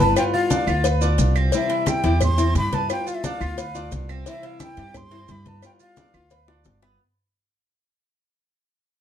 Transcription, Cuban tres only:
0.00 0.32 B4 medium
0.34 0.50 F4 medium
0.50 0.67 D4 medium
0.67 0.84 F4 medium
0.85 1.01 B4 medium
1.01 1.35 D4 medium
1.36 1.52 C4 medium
1.53 1.70 C4 medium
1.70 2.03 E4 medium
2.04 2.37 G4 medium
2.38 2.55 C4 medium
2.55 2.72 G4 medium
2.73 3.06 B4 medium
3.07 3.23 F4 medium
3.24 3.41 D4 medium
3.41 3.57 F4 medium
3.58 3.75 B4 medium
3.75 4.08 D4 medium
4.09 4.25 C4 loud
4.26 4.43 C4 medium
4.43 4.76 E4 medium
4.77 5.11 G4 medium
5.11 5.28 C4 medium
5.29 5.45 G4 medium
5.46 5.79 B4 medium
5.80 5.97 F4 medium
5.97 6.14 D4 medium
6.14 6.31 F4 medium
6.31 6.48 B4 medium
6.48 6.82 D4 medium
6.83 6.99 B3 medium

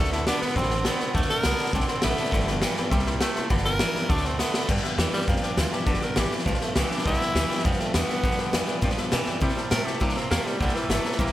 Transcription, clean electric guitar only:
0.00 0.27 D3 medium
0.00 0.28 A3 loud
0.28 0.54 D3 medium
0.28 0.54 B3 loud
0.57 0.85 D3 medium
0.57 0.86 C4 medium
0.86 1.12 D3 medium
0.86 1.13 B3 loud
1.15 1.44 D3 medium
1.15 1.45 A3 loud
1.45 1.72 D3 loud
1.45 1.72 B3 loud
1.74 2.02 D3 medium
1.74 2.04 C4 medium
2.03 2.30 D3 medium
2.03 2.30 B3 medium
2.33 2.61 G2 loud
2.33 2.63 D3 loud
2.62 2.89 G2 medium
2.62 2.89 E3 loud
2.92 3.19 C3 medium
2.92 3.21 G3 loud
3.20 3.48 C3 medium
3.20 3.48 A3 loud
3.50 3.79 G2 medium
3.50 3.80 D3 loud
3.80 4.07 G2 medium
3.80 4.07 E3 loud
4.08 4.38 D3 medium
4.08 4.39 A3 loud
4.39 4.66 D3 medium
4.39 4.66 B3 loud
4.69 4.97 G2 medium
4.69 4.98 D3 medium
4.98 5.25 G2 medium
4.98 5.25 E3 loud
5.28 5.56 G2 medium
5.28 5.57 F3 medium
5.57 5.84 G2 medium
5.57 5.84 E3 medium
5.86 6.15 G2 loud
5.86 6.16 D3 medium
6.16 6.43 G2 medium
6.16 6.43 E3 loud
6.46 6.74 G2 medium
6.46 6.76 F3 medium
6.76 7.02 G2 medium
6.76 7.03 E3 loud
7.06 7.34 G2 medium
7.06 7.35 D3 loud
7.35 7.62 G2 medium
7.35 7.62 E3 loud
7.64 7.93 G2 medium
7.64 7.94 F3 medium
7.94 8.21 G2 medium
7.94 8.21 E3 medium
8.24 8.52 G2 medium
8.24 8.54 D3 medium
8.53 8.80 G2 medium
8.53 8.80 E3 medium
8.83 9.11 G2 medium
8.83 9.13 F3 medium
9.12 9.39 G2 medium
9.12 9.39 E3 loud
9.42 9.71 C3 medium
9.42 9.72 G3 medium
9.72 9.98 C3 medium
9.72 9.99 A3 medium
10.01 10.29 C3 medium
10.01 10.30 A#3 medium
10.30 10.57 C3 medium
10.30 10.57 A3 medium
10.60 10.88 C3 medium
10.60 10.90 G3 medium
10.90 11.16 C3 medium
10.90 11.17 A3 medium
11.19 11.32 C3 medium
11.19 11.32 A#3 medium

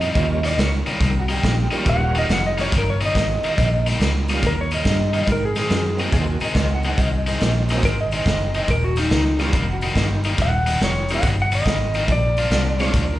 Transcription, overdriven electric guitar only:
0.01 0.25 D#3 medium
0.01 0.25 G3 medium
0.01 0.25 A#3 medium
0.01 0.24 D#4 medium
0.44 0.67 D#3 medium
0.44 0.67 G3 medium
0.44 0.67 A#3 medium
0.44 0.67 D#4 loud
0.87 1.10 D#3 medium
0.87 1.10 G3 medium
0.87 1.10 A#3 medium
0.87 1.10 D#4 medium
1.29 1.53 D#3 medium
1.29 1.53 G3 medium
1.29 1.53 A#3 medium
1.29 1.52 D#4 medium
1.71 1.96 D#3 medium
1.71 1.95 G3 medium
1.71 1.95 A#3 medium
1.71 1.95 D#4 medium
2.15 2.39 D#3 medium
2.15 2.39 G3 medium
2.15 2.38 A#3 medium
2.15 2.38 D#4 medium
2.58 2.82 D#3 medium
2.58 2.81 G3 medium
2.58 2.81 A#3 medium
2.58 2.81 D#4 medium
3.01 3.25 D#3 medium
3.01 3.24 G3 medium
3.01 3.24 A#3 medium
3.01 3.24 D#4 medium
3.44 3.67 D#3 medium
3.44 3.67 G3 medium
3.44 3.67 A#3 medium
3.44 3.67 D#4 medium
3.87 4.10 D#3 medium
3.87 4.10 G3 medium
3.87 4.10 A#3 medium
3.87 4.10 D#4 medium
4.30 4.53 D#3 medium
4.30 4.53 G3 medium
4.30 4.53 A#3 medium
4.30 4.52 D#4 medium
4.72 4.95 D#3 medium
4.72 4.95 G3 medium
4.72 4.95 A#3 medium
4.72 4.95 D#4 medium
5.14 5.29 D#3 medium
5.14 5.29 G3 medium
5.14 5.29 A#3 medium
5.14 5.28 D#4 medium
5.56 5.80 D#3 medium
5.56 5.80 G#3 medium
5.56 5.80 C4 medium
5.56 5.80 D#4 medium
6.00 6.23 D#3 medium
6.00 6.23 G#3 medium
6.00 6.23 C4 medium
6.00 6.23 D#4 medium
6.42 6.65 D#3 medium
6.42 6.65 G#3 medium
6.42 6.65 C4 medium
6.42 6.65 D#4 medium
6.85 7.08 D#3 medium
6.85 7.08 G#3 medium
6.85 7.08 C4 medium
6.85 7.08 D#4 medium
7.27 7.51 D#3 medium
7.27 7.50 G#3 medium
7.27 7.50 C4 medium
7.27 7.50 D#4 loud
7.71 7.94 D#3 medium
7.71 7.93 G#3 medium
7.71 7.93 C4 medium
7.71 7.93 D#4 medium
8.13 8.36 D#3 medium
8.13 8.36 G#3 medium
8.13 8.36 C4 medium
8.13 8.35 D#4 medium
8.55 8.70 D#3 medium
8.55 8.70 G#3 medium
8.55 8.70 C4 medium
8.55 8.69 D#4 medium
8.97 9.21 D#3 medium
8.97 9.21 G3 medium
8.97 9.21 A#3 medium
8.97 9.20 D#4 loud
9.40 9.63 D#3 medium
9.40 9.63 G3 medium
9.40 9.63 A#3 medium
9.40 9.63 D#4 medium
9.83 10.06 D#3 medium
9.83 10.06 G3 medium
9.83 10.05 A#3 medium
9.83 10.06 D#4 medium
10.25 10.49 D#3 medium
10.25 10.48 G3 medium
10.25 10.48 A#3 medium
10.25 10.48 D#4 medium
10.67 10.91 D#3 medium
10.67 10.91 G3 medium
10.67 10.90 A#3 medium
10.67 10.90 D#4 loud
11.11 11.34 D#3 medium
11.11 11.34 G3 medium
11.11 11.33 A#3 medium
11.11 11.33 D#4 medium
11.52 11.76 D#3 medium
11.52 11.75 G3 medium
11.52 11.75 A#3 medium
11.52 11.75 D#4 medium
11.95 12.10 D#3 medium
11.95 12.10 G3 medium
11.95 12.10 A#3 medium
11.95 12.10 D#4 medium
12.38 12.61 F3 medium
12.38 12.61 A#3 medium
12.38 12.61 D4 medium
12.38 12.61 F4 medium
12.80 13.04 F3 medium
12.80 13.03 A#3 medium
12.80 13.03 D4 medium
12.80 13.03 F4 medium

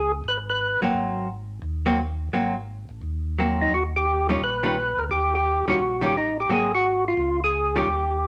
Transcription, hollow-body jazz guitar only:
0.82 1.27 F#3 medium
0.82 1.27 A#3 medium
0.82 1.27 C4 medium
1.86 1.97 F#3 medium
1.86 1.97 A#3 medium
1.86 1.98 C4 medium
2.33 2.53 F#3 medium
2.33 2.53 A#3 medium
2.33 2.53 C4 medium
3.39 3.72 F#3 medium
3.39 3.73 A#3 medium
3.39 3.73 C4 medium
4.29 4.40 D#3 medium
4.29 4.40 G3 medium
4.29 4.41 C#4 medium
4.29 4.41 F4 medium
4.63 4.74 D#3 medium
4.63 4.75 G3 medium
4.63 4.75 C#4 medium
4.63 4.75 F4 medium
5.68 5.79 D#3 medium
5.68 5.79 G3 medium
5.68 5.79 C#4 medium
5.68 5.79 F4 medium
6.01 6.13 D#3 medium
6.01 6.13 G3 medium
6.01 6.13 C#4 medium
6.01 6.14 F4 medium
6.49 6.69 F#3 medium
6.49 6.69 A#3 medium
6.49 6.69 C4 medium
7.76 7.87 D#3 medium
7.76 7.87 G3 medium
7.76 7.87 C#4 medium
7.76 7.87 F4 medium

